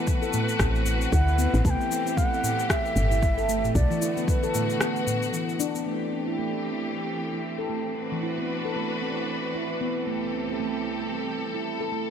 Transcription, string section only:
Already playing: E3 C4 F#4 B4
1.64 A3 G4
3.75 D3 B3 F#4
5.86 E3 A3 C4 G4
7.97 E3 D4 F#4 B4
10.07 C2 C4 G4 A4

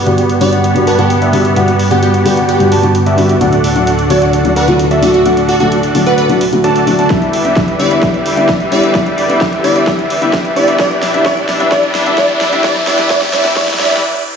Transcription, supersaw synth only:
0.06 F#4 G4 B4 D5 F#5
0.53 F#4 G4 B4 D5 F#5
0.87 F#4 G4 B4 D5 A5
1.22 F#4 G4 B4 D5 E5
1.56 F#4 G4 B4 D5 F#5
1.91 F#4 G4 B4 D5 F#5
2.37 F#4 G4 B4 D5 F#5
2.72 F#4 G4 B4 D5 A5
3.06 F#4 G4 B4 D5 E5
3.41 D4 F#4 A4 D5 F#5
3.76 D4 F#4 A4 D5 F#5
4.22 D4 F#4 A4 D5 F#5
4.56 D4 F#4 A4 D5 F#5
4.91 D4 F#4 A4 D5 E5
5.26 D4 F#4 A4 D5 F#5
5.60 D4 F#4 A4 D5 F#5
6.06 D4 F#4 A4 D5 F#5
6.64 D4 F#4 A4 D5 A5
6.99 D4 F#4 A4 D5 A5
7.10 E4 G4 B4 D5 E5
7.45 E4 G4 B4 D5 E5
7.91 E4 G4 B4 D5 E5
8.03 E4 G4 B4 D5 E5
8.37 E4 G4 B4 D5 E5
8.83 E4 G4 B4 D5 E5
8.95 E4 G4 B4 D5 E5
9.30 E4 G4 B4 D5 E5
9.76 E4 G4 B4 D5 E5
9.87 E4 G4 B4 D5 E5
10.22 E4 G4 B4 D5 E5
10.68 E4 G4 B4 D5 E5
10.79 E4 G4 B4 D5 E5
11.14 E4 G4 B4 D5 E5
11.26 E4 G4 B4 D5 E5
11.60 E4 G4 B4 D5 E5
11.72 E4 G4 B4 D5 E5
12.06 E4 G4 B4 D5 E5
12.18 E4 G4 B4 D5 E5
12.53 E4 G4 B4 D5 E5
12.64 E4 G4 B4 D5 E5
12.87 E4 G4 B4 D5 E5
13.10 E4 G4 B4 D5 E5
13.33 E4 G4 B4 D5 E5
13.56 E4 G4 B4 D5 E5
13.79 E4 G4 B4 D5 E5

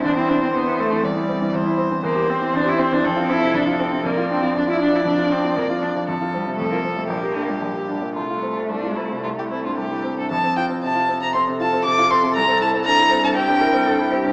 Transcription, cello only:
0.04 D4
0.16 C4
0.29 D4
0.43 C4
0.55 B3
0.80 A3
1.05 G3
2.04 A#3
2.30 C4
2.56 D4
2.69 E4
2.80 C4
2.93 D4
3.05 C4
3.30 E4
3.55 D4
3.81 C4
4.06 A#3
4.32 C4
4.58 D4
4.71 E4
4.82 D4
4.96 E4
5.06 D4
5.32 C4
5.57 A#3
5.82 D4
6.07 F3
6.34 G3
6.58 A3
6.72 A#3
6.84 G3
6.97 A3
7.08 A#3
7.50 G3
7.61 F3
7.88 G3
8.14 A3
11.33 A4
13.35 G4
13.61 A#4
13.86 A4
14.10 G4

